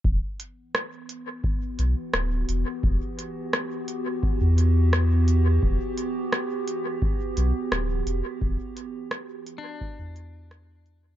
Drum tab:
HH |-x-x-x-x|-x-x-x-x|-x-x-x-x|-x-x-x-x|
SD |--r---r-|--r---r-|--r---r-|--r---r-|
BD |o---o---|o---o---|o---o---|o---o---|